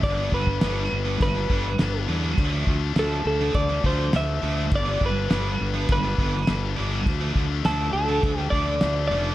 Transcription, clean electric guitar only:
X:1
M:4/4
L:1/8
Q:1/4=102
K:Ddor
V:1 name="Clean electric guitar"
d B3 B3 z | z2 A A d c e2 | d B3 B3 z | z2 A A2 d2 d |]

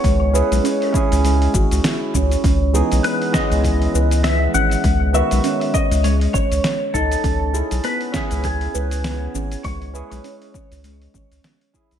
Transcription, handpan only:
X:1
M:4/4
L:1/16
Q:"Swing 16ths" 1/4=100
K:C#m
V:1 name="Handpan"
G, z B G, C2 C2 G, z F z E z C z | C2 G z B, z C2 E z B z B, z C2 | G, z B G, C2 C2 G, z C z3 D2 | C2 G z B, z C2 E z B z B, z C2 |
G, z B G, C2 C2 G, z C z3 E2 |]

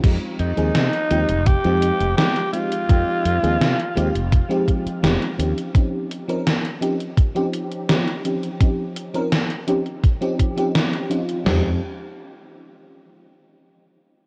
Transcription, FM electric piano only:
X:1
M:4/4
L:1/16
Q:1/4=84
K:Fm
V:1 name="FM electric piano"
[F,A,CEG]3 [F,A,CEA] z2 [F,A,CEG] z2 [F,A,CEG]3 [F,A,CEG] z [F,A,CEG]2 | [F,A,CEG]3 [F,A,CEA] z2 [F,A,CEG] z2 [F,A,CEG]3 [F,A,CEG] z [F,CDEG]2 | [F,CDEG]3 [F,CDEB] z2 [F,CDEG] z2 [F,CDEG]3 [F,CDEG] z [F,CDEG]2 | [F,CDEG]3 [F,CDEB] z2 [F,CDEG] z2 [F,CDEG]2 [F,CDEG]3 [F,CDEF]2 |
[F,A,CEG]2 z12 z2 |]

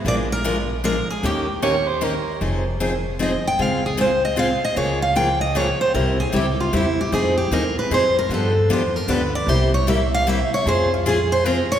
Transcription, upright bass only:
X:1
M:3/4
L:1/8
Q:"Swing" 1/4=153
K:Ebmix
V:1 name="Upright bass" clef=bass
B,,,6 | E,,6 | [K:Fm] F,,,6 | D,,6 |
D,,6 | C,,2 D,,2 =E,,2 | F,,2 E,,2 F,,2 | G,,2 =E,,2 =D,,2 |
C,,6 | F,,6 |]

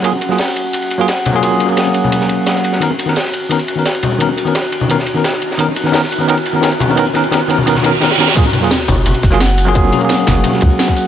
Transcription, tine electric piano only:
X:1
M:4/4
L:1/16
Q:1/4=173
K:F#
V:1 name="Tine electric piano"
[F,A,EG] z2 [F,A,EG] z6 z [F,A,EG] z3 [F,A,EG] | [F,A,EG]3 [F,A,G]12- [F,A,G] | [D,B,CA] z2 [D,B,CA] z4 [D,B,CA] z2 [D,B,CA] z4 | [D,B,CA] z2 [D,B,CA] z4 [D,B,CA] z2 [D,B,CA] z4 |
[D,B,CA] z2 [D,B,CA] [D,B,CA] z2 [D,B,CA] [D,B,CA] z2 [D,B,CA] [D,B,CA] z2 [D,B,CA] | [D,B,CA] z [D,B,CA] z [D,B,CA] z [D,B,CA] z [D,B,CA] z [D,B,CA] z [D,B,CA] z [D,B,CA] z | [F,A,EG] z2 [F,A,EG] z6 z [F,A,EG] z3 [F,A,EG] | [F,A,EG]3 [F,A,G]12- [F,A,G] |]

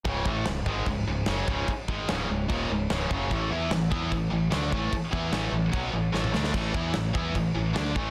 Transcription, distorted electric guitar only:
X:1
M:4/4
L:1/8
Q:1/4=148
K:C#phr
V:1 name="Distorted electric guitar" clef=bass
[C,,G,,C,] [A,,E,A,] [C,,G,,] [G,,^D,G,] [C,,G,,] [C,,G,,] [F,,C,F,] [C,,G,,C,] | z [G,,^D,G,] [C,,G,,C,] [C,,G,,] [^D,,^A,,D,] [C,,G,,] [C,,G,,C,] [F,,C,F,] | [A,,E,A,] [E,B,E] [A,,E,] [E,B,E] [A,,E,] [A,,E,] [D,A,D] [A,,E,A,] | z [E,B,E] [A,,E,A,] [A,,E,] [B,,F,B,] [A,,E,] [A,,E,A,] [D,A,D] |
[A,,E,A,] [E,B,E] [A,,E,] [E,B,E] [A,,E,] [A,,E,] [D,A,D] [A,,E,A,] |]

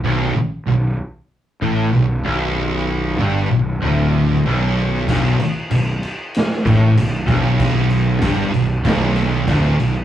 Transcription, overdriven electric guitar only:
X:1
M:4/4
L:1/8
Q:1/4=95
K:Bm
V:1 name="Overdriven electric guitar" clef=bass
B,,, z B,,, z2 A,, B,,, B,,,- | B,,,2 G,, B,,, D,,2 B,,,2 | B,,, z B,,, z2 A,, B,,, B,,,- | B,,,2 G,, B,,, B,,,2 D,, B,,, |]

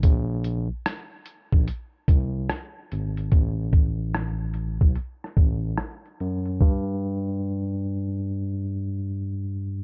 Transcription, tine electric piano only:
X:1
M:4/4
L:1/16
Q:"Swing 16ths" 1/4=73
K:Bb
V:1 name="Tine electric piano" clef=bass
B,,,3 z4 B,,, z2 C,,2 z2 _A,,,2 | A,,,6- A,,, =B,,, z2 A,,,2 z2 ^F,,2 | G,,16 |]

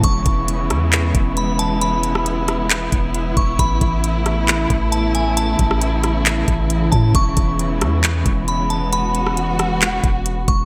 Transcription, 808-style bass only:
X:1
M:4/4
L:1/8
Q:1/4=135
K:Emix
V:1 name="808-style bass" clef=bass
E,,, E,,,2 E,,2 E,,,3- | E,,,4- E,,, E,,,2 E,,, | A,,, A,,,4 A,,,3- | A,,, A,,,4 A,,,2 A,, |
E,,, E,,,2 E,,2 E,,,3- | E,,,4- E,,, E,,,2 E,,, |]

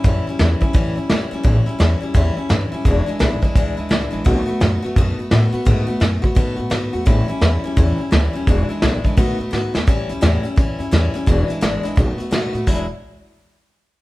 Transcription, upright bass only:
X:1
M:4/4
L:1/8
Q:"Swing" 1/4=171
K:A
V:1 name="Upright bass" clef=bass
F,, z E,, z F,, =G,, F,, D,, | A,,, z E,, z E,, z =G,, z | E,,, z B,,, z C,, D,, C,, A,,, | B,,, z F,, z F,, z A,, z |
G,, z F,, z G,, A,, G,, E,, | A,,, z E,, z E,, z D,, z | E,,, z B,,, z B,,, A,, G,, E,, | A,,, C,, E,, z F,, =G,, E,, z |
E,,, z G,,, G,,, B,,, z F,, A,, | E,,, z6 z |]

